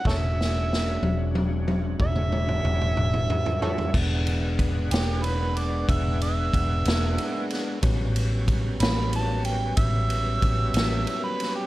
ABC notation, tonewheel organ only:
X:1
M:12/8
L:1/8
Q:3/8=62
K:Emix
V:1 name="Tonewheel organ"
[G,CDF]12 | [G,B,Df]12 | [F,=G,B,C]12 |]